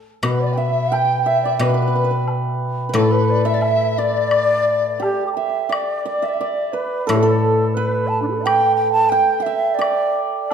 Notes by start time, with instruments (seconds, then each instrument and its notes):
0.23 guzheng B2, hammered dulcimer B4, xiao B4, high woodblock
0.27 dizi B4
0.41 xiao D5, dizi D5
0.53 xiao G5, dizi G5
0.57 hammered dulcimer E5, xiao E5
0.62 dizi E5
0.92 hammered dulcimer G5, xiao G5, dizi G5, low woodblock
1.22 xiao E5, dizi G5
1.26 hammered dulcimer E5, dizi E5
1.43 xiao D5, hammered dulcimer D5
1.59 guzheng B2, xiao B4, dizi B4, hammered dulcimer B4, high woodblock
1.69 hammered dulcimer B4
1.74 hammered dulcimer B4
1.82 hammered dulcimer B4
1.88 hammered dulcimer B4
1.95 hammered dulcimer B4
2.04 hammered dulcimer B4
2.11 hammered dulcimer B4
2.28 low woodblock
2.89 hammered dulcimer B4
2.94 guzheng A2, xiao A4, hammered dulcimer A4, dizi A4, high woodblock
3.11 dizi B4, xiao B4
3.30 xiao D5
3.45 hammered dulcimer E5, dizi E5, xiao E5
3.54 dizi D5
3.61 dizi E5, low woodblock
3.98 xiao D5, hammered dulcimer D5, dizi D5
4.31 high woodblock
5.00 hammered dulcimer G4, xiao G4, low woodblock
5.26 xiao D6
5.33 hammered dulcimer E5, xiao E5 G5 A5
5.69 hammered dulcimer D5, high woodblock
5.74 xiao D5
6.05 hammered dulcimer D5, xiao D5
6.22 hammered dulcimer E5, xiao E5
6.28 xiao D5
6.33 xiao E5
6.40 xiao D5, hammered dulcimer D5
6.73 xiao B4, hammered dulcimer B4
7.07 guzheng A2, xiao A4, hammered dulcimer A4, high woodblock
7.16 xiao G4
7.20 xiao A4, hammered dulcimer A4
7.74 xiao B4, hammered dulcimer B4
8.08 xiao A5
8.22 xiao D4
8.28 xiao E4 G4
8.35 xiao A4
8.40 xiao D5 E5
8.44 xiao G5, hammered dulcimer G5, high woodblock
8.76 xiao G5
8.92 xiao A5
9.09 xiao G5, hammered dulcimer G5
9.40 xiao E5, hammered dulcimer G5
9.46 hammered dulcimer E5
9.74 xiao D5
9.79 hammered dulcimer D5, high woodblock
10.43 xiao D5
10.51 low woodblock